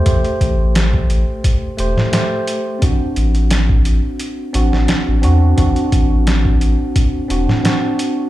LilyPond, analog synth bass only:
\new Staff \with { instrumentName = "Analog synth bass" } { \clef bass \time 4/4 \key d \mixolydian \tempo 4 = 87 a,,16 r16 a,,4~ a,,16 r8. e,,16 a,16 r4 | a,,16 r16 a,,4~ a,,16 r8. a,,16 a,,16 r16 a,,16 e,8 | a,,16 r16 a,,4~ a,,16 r8. e,,16 a,16 r4 | }